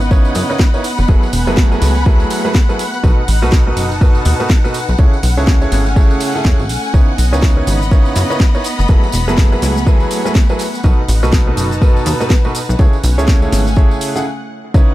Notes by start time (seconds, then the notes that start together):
Already playing: G#1 B3 D#5 F#5 B5
0.01 tambourine
0.11 C#3 D#4 E4 B4 C#5, kick, tambourine
0.25 tambourine
0.35 F#2, open hi-hat, tambourine
0.50 C#3 D#4 E4 B4 C#5, tambourine
0.59 kick, snare, tambourine
0.74 D#4 E4 B4 C#5, tambourine
0.84 open hi-hat, tambourine
0.98 F#1, tambourine
1.05 F#1 F#3 E4 G#4 A4 B4 G#5, kick, tambourine
1.11 A3
1.23 tambourine
1.33 E1, open hi-hat, tambourine
1.47 F#1 F#3 E4 G#4 A4 B4, tambourine
1.57 kick, snare, tambourine
1.72 F#3 E4 G#4 A4 B4, tambourine
1.81 C#2, snare, open hi-hat, tambourine
1.96 tambourine
2.06 F#3 E4 G#4 A4 B4, kick, tambourine
2.20 tambourine
2.30 open hi-hat, tambourine
2.45 F#3 E4 G#4 A4 B4, tambourine
2.55 kick, snare, tambourine
2.69 F#3 E4 G#4 A4 B4, tambourine
2.79 open hi-hat, tambourine
2.94 tambourine
3.03 B1 B2 D#4 F#4 A4 B4, kick, tambourine
3.28 A1 B4, open hi-hat, tambourine
3.42 B1 B2 D#4 F#4 A4 B4, tambourine
3.52 kick, snare, tambourine
3.67 B2 D#4 F#4 A4 B4
3.77 F#1, open hi-hat, tambourine
3.91 A5, tambourine
4.01 B2 D#4 F#4 A4 B4, kick, tambourine
4.15 tambourine
4.25 D#2, open hi-hat, tambourine
4.40 B2 D#4 F#4 A4 B4, tambourine
4.50 kick, snare, tambourine
4.64 B2 D#4 F#4 A4 B4, tambourine
4.74 open hi-hat, tambourine
4.88 B1, tambourine
4.98 C#2 C#3 C#4 E4 G#4 A4 C#5, kick, tambourine
5.13 tambourine
5.23 B1 A3, open hi-hat, tambourine
5.37 C#2 C#3 E4 G#4 A4 C#5, tambourine
5.47 kick, snare, tambourine
5.62 C#3 E4 G#4 A4 C#5, tambourine
5.72 G#1, snare, open hi-hat, tambourine
5.86 G#5, tambourine
5.96 C#3 E4 G#4 A4 C#5, kick, tambourine
6.10 tambourine
6.20 open hi-hat, tambourine
6.35 C#3 E4 G#4 A4 F#5, tambourine
6.45 E2 C#3 E4 G#4 A4 C#5, kick, snare, tambourine
6.59 G#1, tambourine
6.69 B1, open hi-hat, tambourine
6.84 tambourine
6.94 C#2 C#3 B3 D#4 E4 B4 C#5, kick, tambourine, shaker
7.11 D#5
7.18 B1, open hi-hat, tambourine, shaker
7.33 C#2 C#3 D#4 E4 B4 C#5, tambourine, shaker
7.42 kick, snare, tambourine, shaker
7.57 C#3 D#4 E4 B4 C#5
7.67 G#1 B5, open hi-hat, tambourine, shaker
7.82 tambourine, shaker
7.91 C#3 D#4 E4 B4 C#5, kick, tambourine, shaker
8.05 tambourine
8.15 F#2, open hi-hat, tambourine, shaker
8.30 C#3 D#4 E4 B4 C#5, tambourine, shaker
8.40 kick, snare, tambourine, shaker
8.55 D#4 E4 B4 C#5, tambourine
8.64 open hi-hat, tambourine, shaker
8.75 A3, tambourine
8.79 F#1, shaker
8.88 F#1 F#3 E4 G#4 A4 B4, kick, tambourine, shaker
9.03 tambourine
9.12 E1, open hi-hat, tambourine, shaker
9.28 F#1 F#3 E4 G#4 A4 B4, tambourine, shaker
9.38 kick, snare, tambourine, shaker
9.52 F#3 E4 G#4 A4 B4, tambourine
9.62 C#2 G#5, snare, open hi-hat, tambourine, shaker
9.76 tambourine, shaker
9.87 F#3 E4 G#4 A4 B4, kick, tambourine, shaker
10.00 tambourine
10.11 open hi-hat, tambourine, shaker
10.25 F#3 E4 G#4 A4 B4, tambourine, shaker
10.35 kick, snare, tambourine, shaker
10.49 F#3 E4 G#4 A4 B4, tambourine
10.59 open hi-hat, tambourine, shaker
10.74 tambourine, shaker
10.84 B1 B2 D#4 F#4 A4 B4, kick, tambourine, shaker
11.08 A1, open hi-hat, tambourine, shaker
11.23 B1 B2 D#4 F#4 A4 B4, tambourine, shaker
11.32 kick, snare, tambourine, shaker
11.41 B4
11.47 B2 D#4 F#4 A4 B4
11.55 F#1 A5, open hi-hat, tambourine, shaker
11.71 tambourine, shaker
11.82 B2 D#4 F#4 A4 B4, kick, tambourine, shaker
11.97 tambourine
12.06 D#2, open hi-hat, tambourine, shaker
12.20 B2 D#4 F#4 A4 B4, tambourine, shaker
12.30 kick, snare, tambourine, shaker
12.44 B2 D#4 F#4 A4 B4, tambourine
12.55 open hi-hat, tambourine, shaker
12.69 B1, tambourine, shaker
12.79 C#2 C#3 C#4 E4 G#4 A4 C#5, kick, tambourine, shaker
12.93 tambourine
13.04 B1, open hi-hat, tambourine, shaker
13.13 A3
13.18 C#2 C#3 E4 G#4 A4 C#5, tambourine, shaker
13.28 kick, snare, tambourine, shaker
13.42 C#3 E4 G#4 A4 C#5, tambourine
13.49 G#1 G#5, snare, open hi-hat, tambourine, shaker
13.67 tambourine, shaker
13.76 C#3 E4 G#4 A4 C#5, kick, tambourine, shaker
13.91 tambourine
14.01 open hi-hat, tambourine, shaker
14.15 C#3 E4 G#4 A4 F#5, tambourine, shaker
14.74 C#2 C#3 C#4 D#4 E4 B4 C#5 F#5, kick, tambourine, shaker